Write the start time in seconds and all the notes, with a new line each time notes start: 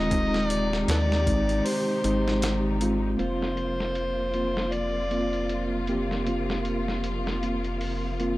Already playing: D#1 C3 D#3 G#3 C4 D#4 F4 D#5
0.11 G#3 C4 D#4 G4, kick, closed hi-hat
0.34 snare
0.47 D5, closed hi-hat
0.73 snare
0.88 D#2 A4 B4 D5, snare, closed hi-hat
1.12 snare
1.26 G#1 G#3 C4 D#4, kick, closed hi-hat
1.49 closed hi-hat
1.66 C5, open hi-hat
2.04 G#1 G#3 C4 D#4, closed hi-hat
2.28 snare
2.42 snare, closed hi-hat
2.81 G#3 C4 F4, closed hi-hat
3.17 F1 C3 F3 A#3 C4 F4 C5, closed hi-hat
3.42 snare
3.57 closed hi-hat
3.80 snare
3.95 closed hi-hat
4.34 A#3 C4 F4, closed hi-hat
4.57 snare
4.72 D5, closed hi-hat
5.11 A#3 C4 F4, closed hi-hat
5.33 closed hi-hat
5.49 closed hi-hat
5.87 A#3 C4 G4, closed hi-hat
6.11 snare
6.26 A#3 C4 F4, closed hi-hat
6.50 snare
6.65 closed hi-hat
6.88 snare
7.04 closed hi-hat
7.27 snare
7.43 A#3 C4 F4, closed hi-hat
7.64 closed hi-hat
7.81 open hi-hat
8.20 A#3 C4 F4, closed hi-hat